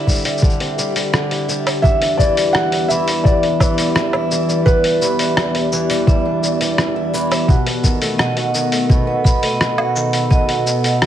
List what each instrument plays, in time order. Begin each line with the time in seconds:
Already playing: steel-string acoustic guitar D3 C4 E4, ambient pad D3 G4 E5
0.07 steel-string acoustic guitar G3, kick, shaker
0.11 shaker
0.13 shaker
0.15 shaker
0.17 shaker
0.19 shaker
0.22 shaker
0.24 steel-string acoustic guitar G3, open hi-hat, shaker
0.26 shaker
0.37 shaker
0.42 steel-string acoustic guitar D3, kick, shaker
0.50 shaker
0.60 steel-string acoustic guitar C4, open hi-hat
0.78 steel-string acoustic guitar G3, shaker
0.96 steel-string acoustic guitar G3, open hi-hat, shaker
1.13 steel-string acoustic guitar D3, cross-stick, shaker
1.31 steel-string acoustic guitar E4, open hi-hat
1.48 steel-string acoustic guitar G3, shaker
1.66 steel-string acoustic guitar G3, open hi-hat, low woodblock, shaker
1.82 steel-string acoustic guitar E2, ambient pad E3 B3 D5, felt piano E5, vibraphone E5, kick, shaker
2.02 steel-string acoustic guitar D4, open hi-hat
2.17 steel-string acoustic guitar E3, felt piano D5, kick, shaker
2.37 steel-string acoustic guitar G3, open hi-hat, shaker
2.53 steel-string acoustic guitar E2, felt piano F#5, cross-stick, shaker
2.72 steel-string acoustic guitar E4, open hi-hat
2.88 steel-string acoustic guitar E3, felt piano E5, vibraphone B5, shaker
3.07 steel-string acoustic guitar G3, vibraphone E5, open hi-hat, shaker
3.24 steel-string acoustic guitar E2, felt piano D5, kick, shaker
3.43 steel-string acoustic guitar D4, open hi-hat
3.60 steel-string acoustic guitar E3, kick, low woodblock, shaker
3.78 steel-string acoustic guitar G3, open hi-hat, shaker
3.95 steel-string acoustic guitar E2, vibraphone E5, cross-stick, shaker
4.13 steel-string acoustic guitar E4, low woodblock
4.31 steel-string acoustic guitar E3, shaker
4.49 steel-string acoustic guitar G3, shaker
4.66 felt piano B4, kick, shaker
4.84 steel-string acoustic guitar D4, open hi-hat
5.02 steel-string acoustic guitar E3, vibraphone B5, shaker
5.19 steel-string acoustic guitar G3, vibraphone E5, open hi-hat, shaker
5.37 steel-string acoustic guitar E2, cross-stick, shaker
5.55 steel-string acoustic guitar E4, open hi-hat
5.72 steel-string acoustic guitar E3, shaker
5.90 steel-string acoustic guitar G3, open hi-hat, shaker
6.07 steel-string acoustic guitar E2, vibraphone E5, kick, shaker
6.25 steel-string acoustic guitar D4
6.43 steel-string acoustic guitar E3, shaker
6.61 steel-string acoustic guitar G3, open hi-hat, shaker
6.78 steel-string acoustic guitar E2, cross-stick, shaker
6.96 steel-string acoustic guitar E4
7.13 steel-string acoustic guitar E3, vibraphone B5, shaker
7.31 steel-string acoustic guitar G3, vibraphone E5, open hi-hat, low woodblock, shaker
7.48 steel-string acoustic guitar B2, ambient pad B2 A4 D#5, kick, shaker
7.66 steel-string acoustic guitar B3, open hi-hat
7.84 steel-string acoustic guitar D#3, kick, shaker
8.02 steel-string acoustic guitar A3, open hi-hat, shaker
8.18 steel-string acoustic guitar B2, vibraphone D#5, cross-stick, shaker
8.37 steel-string acoustic guitar F#4, open hi-hat
8.54 steel-string acoustic guitar D#3, shaker
8.72 steel-string acoustic guitar A3, open hi-hat, shaker
8.89 steel-string acoustic guitar B2, kick, shaker
9.07 steel-string acoustic guitar B3
9.24 steel-string acoustic guitar D#3, vibraphone B5, kick, shaker
9.43 steel-string acoustic guitar A3, vibraphone D#5, open hi-hat
9.60 steel-string acoustic guitar B2, cross-stick, shaker
9.78 steel-string acoustic guitar F#4, low woodblock
9.95 steel-string acoustic guitar D#3, shaker
10.13 steel-string acoustic guitar A3, open hi-hat, shaker
10.30 steel-string acoustic guitar B2, vibraphone D#5, kick, shaker
10.48 steel-string acoustic guitar B3, open hi-hat
10.66 steel-string acoustic guitar D#3, shaker
10.84 steel-string acoustic guitar A3, open hi-hat, shaker
11.02 steel-string acoustic guitar B2, cross-stick, shaker